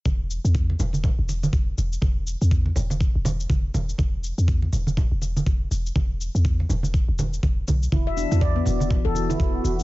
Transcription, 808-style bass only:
0.06 0.39 E1 medium
0.45 0.75 E2 medium
0.79 1.13 E1 loud
1.19 1.49 E1 loud
1.53 1.73 E1 medium
1.78 1.97 E1 medium
2.02 2.36 E1 medium
2.42 2.72 E2 medium
2.76 3.10 E1 loud
3.15 3.46 E1 loud
3.50 3.69 E1 medium
3.74 3.94 E1 medium
3.99 4.32 E1 medium
4.38 4.69 E2 medium
4.73 5.06 E1 loud
5.12 5.42 E1 loud
5.46 5.66 E1 medium
5.71 5.91 E1 medium
5.96 6.29 E1 medium
6.35 6.66 E2 medium
6.69 7.03 E1 loud
7.08 7.39 E1 loud
7.43 7.63 E1 loud
7.68 7.88 B1 medium
7.92 8.26 E1 loud
8.32 8.62 E2 medium
8.67 9.00 E1 loud
9.05 9.36 E1 loud
9.40 9.60 E1 medium
9.64 9.83 E1 medium

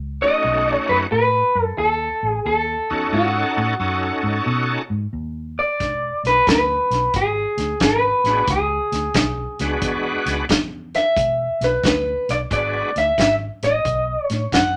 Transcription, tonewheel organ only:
0.21 1.07 A3 medium
0.21 1.07 C#4 medium
0.21 1.07 D#4 medium
0.21 1.07 F#4 medium
2.90 3.75 C#4 medium
2.90 3.75 D#4 medium
2.90 3.75 F#4 medium
2.90 3.75 A4 medium
3.80 4.82 C#4 medium
3.80 4.82 D#4 medium
3.80 4.82 F#4 medium
3.80 4.82 A4 medium
8.26 8.46 G#3 medium
8.26 8.46 B3 medium
8.26 8.46 D4 medium
8.26 8.46 F#4 medium
9.61 10.45 G#3 medium
9.61 10.45 B3 medium
9.61 10.45 D4 medium
9.61 10.45 F#4 medium
12.50 12.91 G#3 medium
12.50 12.91 B3 medium
12.50 12.91 D4 medium
12.50 12.91 F#4 medium

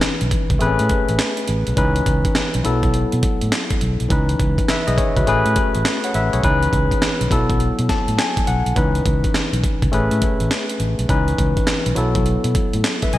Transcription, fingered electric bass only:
0.03 muted fingered electric bass stroke soft
0.22 0.30 B1 medium
0.50 0.59 C#2 medium
0.61 0.76 A1 loud
0.80 0.88 A2 loud
1.09 1.17 A1 medium
1.49 1.64 A1 medium
1.68 1.76 B1 loud
1.77 2.01 C#2 loud
2.07 2.21 C#2 medium
2.37 muted fingered electric bass stroke soft
2.55 2.63 B1 medium
2.65 3.04 B1 loud
3.13 3.21 B2 medium
3.43 3.51 A2 medium
3.82 3.97 B1 medium
4.01 4.09 B1 medium
4.11 4.34 C#2 loud
4.40 4.55 C#2 medium
4.69 muted fingered electric bass stroke soft
4.88 4.96 B1 medium
5.17 5.25 C#2 medium
5.27 5.42 A1 loud
5.46 5.54 A2 loud
5.75 5.83 A1 medium
6.15 6.30 A1 medium
6.34 6.42 B1 medium
6.44 6.67 C#2 loud
6.73 6.88 C#2 medium
7.03 muted fingered electric bass stroke soft
7.21 7.29 B1 medium
7.31 7.69 B1 medium
7.79 7.87 B2 loud
8.08 8.16 A2 medium
8.48 8.63 B1 medium
8.66 8.74 B1 medium
8.77 9.00 C#2 loud
9.06 9.21 C#2 medium
9.34 muted fingered electric bass stroke soft
9.53 9.61 B1 medium
9.83 9.91 C#2 medium
9.93 10.08 A1 loud
10.11 10.20 A2 loud
10.40 10.49 A1 medium
10.80 10.95 A1 medium
10.99 11.07 B1 medium
11.09 11.33 C#2 loud
11.39 11.54 C#2 medium
11.68 muted fingered electric bass stroke soft
11.86 11.95 B1 medium
11.97 12.35 B1 medium
12.44 12.53 B2 loud
12.74 12.82 A2 medium
13.14 13.18 B1 medium

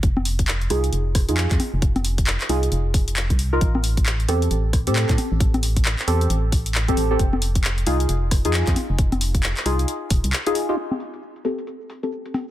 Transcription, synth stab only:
0.70 0.81 D#4 medium
0.70 0.81 F4 medium
0.70 0.81 G#4 medium
1.29 2.47 D#4 medium
1.29 2.47 F4 medium
1.29 2.47 G#4 medium
2.49 2.66 D#4 medium
2.49 2.66 F4 medium
2.49 2.66 G#4 medium
3.53 3.60 D#4 loud
3.53 3.60 F4 medium
3.53 3.60 A#4 loud
4.28 4.40 C4 medium
4.28 4.40 G4 medium
4.28 4.40 A4 medium
4.87 6.06 C4 medium
4.87 6.06 G4 medium
4.87 6.06 A4 medium
6.08 6.24 C4 medium
6.08 6.24 G4 medium
6.08 6.24 A4 medium
6.88 7.01 C4 medium
6.88 7.01 G4 medium
6.88 7.01 A4 loud
7.11 7.18 C4 medium
7.11 7.18 G4 medium
7.11 7.18 A4 medium
7.87 7.98 D#4 medium
7.87 7.98 F4 medium
7.87 7.98 G#4 medium
8.45 9.64 D#4 medium
8.45 9.64 F4 medium
8.45 9.64 G#4 medium
9.66 9.82 D#4 medium
9.66 9.82 F4 medium
9.66 9.82 G#4 medium
10.47 10.59 D#4 medium
10.47 10.59 F4 medium
10.47 10.59 G#4 loud
10.69 10.76 D#4 medium
10.69 10.76 F4 medium
10.69 10.76 G4 medium
11.45 11.56 C4 medium
11.45 11.56 G4 medium
11.45 11.56 A4 medium
12.03 12.51 C4 medium
12.03 12.51 G4 medium
12.03 12.51 A4 medium

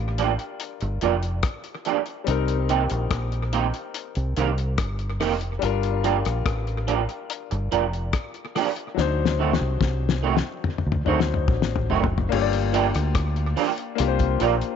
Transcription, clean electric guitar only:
0.18 0.30 F3 medium
0.18 0.30 A#3 medium
0.18 0.30 D4 medium
0.18 0.31 G4 medium
0.82 muted clean electric guitar stroke soft
1.02 1.14 F3 medium
1.02 1.14 A#3 medium
1.02 1.14 D4 medium
1.02 1.14 G4 medium
1.86 1.97 F3 medium
1.86 1.98 A#3 medium
1.86 1.98 D4 medium
1.86 1.98 G4 medium
2.69 2.81 D#3 medium
2.69 2.81 A#3 medium
2.69 2.81 C4 medium
2.69 2.81 G4 medium
3.53 3.65 D#3 medium
3.53 3.65 A#3 medium
3.53 3.65 C4 medium
3.53 3.65 G4 medium
4.37 4.49 D#3 medium
4.37 4.49 A#3 medium
4.37 4.49 C4 medium
4.37 4.49 G4 medium
5.20 5.32 D#3 medium
5.20 5.32 A#3 medium
5.20 5.32 C4 medium
5.20 5.33 G4 medium
6.04 6.16 F3 medium
6.04 6.16 A#3 medium
6.04 6.16 D4 medium
6.04 6.16 G4 medium
6.87 6.99 F3 medium
6.87 7.00 A#3 medium
6.87 7.00 D4 medium
6.87 7.00 G4 medium
7.51 muted clean electric guitar stroke soft
7.72 7.83 F3 medium
7.72 7.83 A#3 medium
7.72 7.84 D4 medium
7.72 7.84 G4 medium
8.55 8.67 F3 medium
8.55 8.67 A#3 medium
8.55 8.68 D4 medium
8.55 8.68 G4 loud
9.39 9.51 D#3 medium
9.39 9.51 A3 medium
9.39 9.51 C4 medium
9.39 9.52 F#4 medium
10.23 10.34 D#3 medium
10.23 10.35 A3 medium
10.23 10.35 C4 medium
10.23 10.35 F#4 medium
11.07 11.18 D#3 medium
11.07 11.18 A3 medium
11.07 11.19 C4 medium
11.07 11.19 F#4 medium
11.90 12.02 D#3 medium
11.90 12.02 A3 medium
11.90 12.02 C4 medium
11.90 12.02 F#4 medium
12.73 12.85 F3 medium
12.73 12.85 A#3 medium
12.73 12.85 D4 medium
12.73 12.86 G4 loud
13.56 13.68 F3 medium
13.56 13.69 A#3 medium
13.56 13.69 D4 medium
13.56 13.69 G4 medium
14.40 14.52 F3 medium
14.40 14.52 A#3 medium
14.40 14.53 D4 medium
14.40 14.53 G4 medium

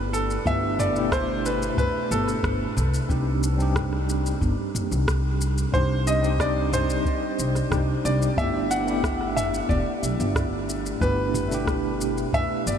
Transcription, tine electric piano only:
0.00 0.41 A3 medium
0.00 0.42 B3 medium
0.00 0.42 D4 medium
0.00 0.43 E4 medium
0.00 0.44 G4 medium
0.45 0.91 A3 medium
0.45 0.92 B3 medium
0.45 0.92 D4 medium
0.45 0.92 E4 medium
0.45 0.93 G4 medium
0.93 2.75 B2 medium
0.93 2.74 A3 medium
0.93 2.75 D4 medium
0.97 2.76 E4 medium
0.97 2.77 G4 medium
3.08 3.55 G3 medium
3.08 3.55 C4 medium
3.08 3.56 D4 medium
3.08 3.56 D#4 medium
3.08 3.56 G4 medium
3.56 5.68 G3 medium
3.56 5.69 C4 medium
3.56 5.70 D4 medium
3.61 5.71 D#4 medium
3.61 5.71 G4 loud
5.72 6.19 G3 medium
5.72 6.19 C4 medium
5.72 6.19 D4 medium
5.72 6.20 D#4 medium
5.72 6.20 G4 medium
6.20 7.67 G3 medium
6.20 7.68 C4 medium
6.20 7.68 D4 medium
6.25 7.69 D#4 medium
6.25 7.70 G4 medium
7.70 7.85 G3 medium
7.70 7.85 C4 medium
7.70 7.86 D4 medium
7.70 7.86 D#4 medium
7.70 7.86 G4 medium
8.36 8.83 A3 medium
8.36 8.83 B3 medium
8.36 8.83 D4 medium
8.36 8.84 E4 medium
8.36 8.84 G4 medium
8.85 10.96 A3 medium
8.85 10.97 B3 medium
8.85 10.98 D4 medium
8.89 10.99 E4 medium
8.89 10.99 G4 medium
11.00 11.47 A3 medium
11.00 11.47 B3 medium
11.00 11.47 D4 medium
11.00 11.48 E4 medium
11.00 11.48 G4 medium
11.48 12.78 B2 medium
11.48 12.78 A3 medium
11.48 12.78 D4 medium
11.53 12.78 E4 medium
11.53 12.78 G4 medium

